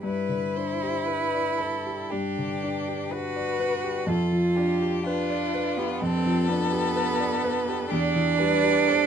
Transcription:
0.03 grand piano G2, cello E4, violin B4
0.29 grand piano D3
0.56 grand piano D4, violin C5
0.83 grand piano G4
1.07 violin B4, grand piano B4
1.34 grand piano D5
1.58 violin A4, grand piano B4
1.86 grand piano G4
2.10 grand piano G2, cello D4, violin G4
2.38 grand piano D3
2.63 grand piano D4
2.88 grand piano G4
3.11 cello F#4, violin B4, grand piano B4
3.36 grand piano D5
3.60 grand piano B4
3.84 grand piano G4
4.07 grand piano F2, cello F4, violin A4
4.32 grand piano F3
4.56 grand piano D4, violin G4
4.82 grand piano G4
5.04 cello D4, violin F4, grand piano B4
5.30 grand piano D5
5.54 grand piano B4
5.77 cello B3, grand piano G4
6.00 grand piano F2, cello C4, violin A4
6.26 grand piano F3
6.48 cello B3, grand piano D4
6.72 grand piano G4
6.96 grand piano B4
7.20 grand piano D5
7.44 grand piano B4
7.68 grand piano G4
7.90 grand piano E2, cello D4, violin G4
8.15 grand piano E3
8.38 grand piano G3, violin B4
8.64 grand piano G4
8.87 violin A4, grand piano C5

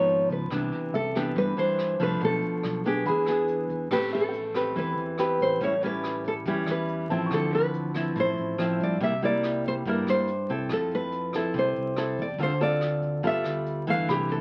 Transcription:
Already playing: fingered electric bass G#1, nylon-string guitar G#2 F3 B3 D#4 C#5
0.08 closed hi-hat
0.29 fingered electric bass C#2, nylon-string guitar B4, kick, closed hi-hat
0.50 fingered electric bass C2, nylon-string guitar C3 E3 B3 D4, kick, cross-stick, closed hi-hat
0.72 closed hi-hat
0.92 fingered electric bass C2, nylon-string guitar A4, grand piano E5, closed hi-hat
1.15 nylon-string guitar E3 B3 D4 G4, kick, cross-stick
1.36 nylon-string guitar G2 B4, fingered electric bass G2, kick, closed hi-hat
1.57 nylon-string guitar E3 D4 C5, closed hi-hat
1.79 cross-stick, closed hi-hat
2.00 fingered electric bass C2, nylon-string guitar F3 A3 D4 B4, kick, closed hi-hat
2.21 fingered electric bass B1, nylon-string guitar B2 A4, kick, closed hi-hat
2.42 closed hi-hat
2.63 fingered electric bass B1, cross-stick, closed hi-hat
2.84 nylon-string guitar B3 D4 G4 G#4, kick, closed hi-hat
3.06 fingered electric bass E2, nylon-string guitar E3 G#4, grand piano B5, kick, closed hi-hat
3.26 nylon-string guitar B3 D4 G#4, cross-stick, closed hi-hat
3.48 closed hi-hat
3.69 fingered electric bass E2, kick, closed hi-hat
3.91 fingered electric bass A1, nylon-string guitar A3 C4 G4 B4, kick, cross-stick, crash
4.12 nylon-string guitar A4, grand piano E5, closed hi-hat
4.29 grand piano G5
4.33 closed hi-hat
4.54 nylon-string guitar C4 G4 B4, kick, cross-stick, closed hi-hat
4.76 fingered electric bass E2, nylon-string guitar E3 B4, kick, closed hi-hat
4.97 fingered electric bass E2, closed hi-hat
5.18 nylon-string guitar C4 G4 B4, cross-stick, closed hi-hat
5.39 fingered electric bass A1, nylon-string guitar C5, kick, closed hi-hat
5.61 fingered electric bass A1, nylon-string guitar A2 G3 C#4 E4 C#5, kick, closed hi-hat
5.82 nylon-string guitar G3 C#4 E4 B4, closed hi-hat
6.04 cross-stick, closed hi-hat
6.24 nylon-string guitar A4, kick, closed hi-hat
6.45 fingered electric bass E2, nylon-string guitar E3 G3 C#4 E4 G4, kick, closed hi-hat
6.66 fingered electric bass E2, cross-stick, closed hi-hat
6.71 nylon-string guitar B4
6.88 closed hi-hat
7.09 fingered electric bass A1, nylon-string guitar F3 C4 E4, grand piano A5, kick, closed hi-hat
7.26 grand piano C#6
7.31 fingered electric bass D2, nylon-string guitar D3 A4, kick, cross-stick, closed hi-hat
7.52 nylon-string guitar B4, closed hi-hat
7.73 closed hi-hat
7.94 nylon-string guitar F3 C4 E4, kick, cross-stick, closed hi-hat
8.16 fingered electric bass A1, nylon-string guitar A2, kick, closed hi-hat
8.20 nylon-string guitar C5
8.37 fingered electric bass A1, closed hi-hat
8.58 nylon-string guitar F3 C4 E4, cross-stick, closed hi-hat
8.79 fingered electric bass G2, kick, closed hi-hat
8.83 nylon-string guitar D5
9.00 fingered electric bass C2, nylon-string guitar C3 G3 A#3 E4 E5, kick, closed hi-hat
9.22 nylon-string guitar G3 A#3 E4 D5, closed hi-hat
9.43 cross-stick, closed hi-hat
9.64 nylon-string guitar C5, kick, closed hi-hat
9.85 fingered electric bass G2, nylon-string guitar G2 G3 A#3 E4 A#4, kick, closed hi-hat
10.07 fingered electric bass G2, nylon-string guitar C5, cross-stick, closed hi-hat
10.27 closed hi-hat
10.49 fingered electric bass C2, nylon-string guitar C4 E4 A4, kick, closed hi-hat
10.69 fingered electric bass F2, nylon-string guitar F3 A4, kick, cross-stick, closed hi-hat
10.91 nylon-string guitar B4, closed hi-hat
11.12 closed hi-hat
11.33 nylon-string guitar C4 E4 A4, kick, cross-stick
11.54 fingered electric bass C2, nylon-string guitar C3, kick, closed hi-hat
11.59 nylon-string guitar C5
11.76 fingered electric bass C2, closed hi-hat
11.96 nylon-string guitar C4 E4 A4, cross-stick, closed hi-hat
12.18 fingered electric bass E2, kick, closed hi-hat
12.22 nylon-string guitar D5
12.38 fingered electric bass D2, nylon-string guitar D3 C4 F4 A4, kick, closed hi-hat
12.43 nylon-string guitar C5
12.60 nylon-string guitar C4 F4 A4 D5, closed hi-hat
12.81 cross-stick, closed hi-hat
13.02 kick, closed hi-hat
13.23 fingered electric bass G1, nylon-string guitar G3 B3 F4 A4 E5, kick, closed hi-hat
13.44 fingered electric bass D2, cross-stick, closed hi-hat
13.66 closed hi-hat
13.87 fingered electric bass G1, nylon-string guitar E3 A3 D4 F5, kick, closed hi-hat
14.09 fingered electric bass C2, nylon-string guitar C3 G4, grand piano B5, kick, cross-stick, closed hi-hat
14.30 nylon-string guitar A4, closed hi-hat

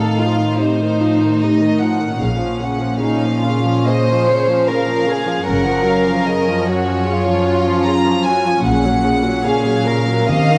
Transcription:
Already playing: cello section A2, viola section D#4, violin section A4 F5
0.02 viola section D#3
0.22 viola section F3, violin section F4
0.41 viola section D#3
0.60 viola section C3, violin section D#4 C5
0.81 viola section D#3
1.01 viola section F3
1.22 viola section D#3
1.41 viola section C3, violin section D#5
1.61 viola section D#3
1.81 viola section F3, violin section F#5
2.00 viola section D#3
2.21 double bass section A#1, cello section A#2, viola section C#3 C#4, violin section F5
2.40 viola section F3
2.61 viola section C#3, violin section F#5
2.80 viola section F3
3.00 viola section C#3, violin section D#4 F5
3.23 viola section F3
3.45 viola section C#3, violin section F4
3.65 viola section F3
3.86 viola section C#3, violin section C5 D#5
4.10 viola section F3
4.25 violin section C#5
4.29 viola section C#3
4.49 viola section F3
4.67 viola section C#3, violin section A#4 F5
4.87 viola section F3
5.07 viola section C#3, violin section G#4
5.29 viola section F3
5.46 double bass section F#1, cello section F#2, viola section C#3 C#4, violin section A#4 F#5
5.67 viola section F3
5.86 viola section F#3, violin section F5
6.07 viola section F3
6.26 viola section C#3, violin section D#5
6.48 viola section F3
6.67 viola section F#3, violin section F#4 C#5
6.85 viola section F3
7.06 viola section C#3, violin section F4
7.26 viola section F3
7.46 viola section F#3
7.67 viola section F3
7.83 viola section C#3, violin section A#5
8.07 viola section F3
8.23 viola section F#3, violin section G#5
8.47 viola section F3
8.64 double bass section A#1, cello section A#2, viola section C#3, violin section F#5
8.85 viola section F#3
9.04 viola section C#3
9.24 viola section F#3
9.43 viola section C#3, violin section G#4 F5
9.67 viola section F#3
9.86 viola section C#3, violin section A#4
10.09 viola section F#3
10.28 double bass section D#2, viola section C3, cello section D#3, violin section D#5 F5
10.51 viola section D#3

